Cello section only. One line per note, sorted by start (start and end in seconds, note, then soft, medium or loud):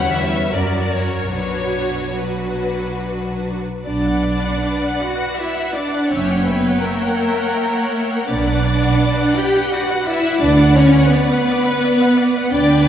0.00 0.54 B4 medium
0.54 1.33 A#4 soft
1.33 3.40 F#4 soft
3.85 4.98 D4 medium
5.03 5.39 F#4 medium
5.39 5.75 E4 medium
5.75 6.11 D4 medium
6.12 6.48 C#4 medium
6.48 6.83 B3 medium
6.83 8.29 A#3 medium
8.30 9.35 D4 medium
9.37 9.72 G4 medium
9.73 10.07 F#4 medium
10.07 10.41 E4 medium
10.41 10.75 D4 medium
10.76 11.12 C#4 loud
11.12 12.53 B3 medium
12.53 12.88 D4 loud